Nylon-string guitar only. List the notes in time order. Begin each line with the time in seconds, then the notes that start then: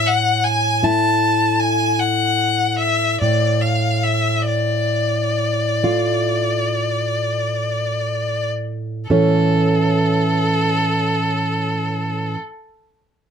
Already playing: A2
0.83 A3 E4
3.22 A2
5.83 A3 F4
9.10 A2 E3 C#4 E4 A4 C#5